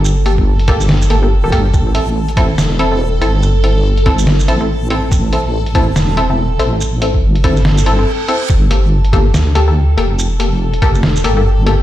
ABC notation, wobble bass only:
X:1
M:4/4
L:1/8
Q:"Swing 16ths" 1/4=142
K:Aphr
V:1 name="Wobble bass" clef=bass
G,,,4- G,,, G,,,2 G,,, | A,,,4 E,,,3 G,,,- | G,,,4- G,,, A,,,3 | A,,,4 E,,,3 A,,,- |
A,,,2 G,,,4 z2 | G,,,4 D,,3 F,,,- | F,,,4- F,,, G,,,3 |]